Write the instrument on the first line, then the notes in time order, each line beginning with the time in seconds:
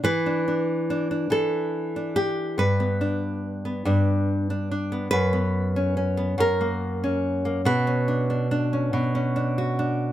nylon-string guitar
0.04 E3 B4
0.26 D4
0.48 D4
0.90 D4
1.11 D4
1.30 E3 A4
1.96 D4
2.16 G4
2.58 G2 B4
2.80 B3
3.01 D4
3.65 B3
3.85 G2 D4
4.50 D4
4.71 D4
4.92 B3
5.11 F#2 B4
5.33 B3
5.76 C#4
5.97 C#4
6.17 B3
6.38 F#2 A#4
6.61 A#3
7.04 C#4
7.45 A#3
7.65 B2 B4
7.87 C#4
8.08 D4
8.30 D4
8.51 D4
8.73 C#4
8.93 B2
9.15 C#4
9.36 D4
9.58 F#4
9.79 D4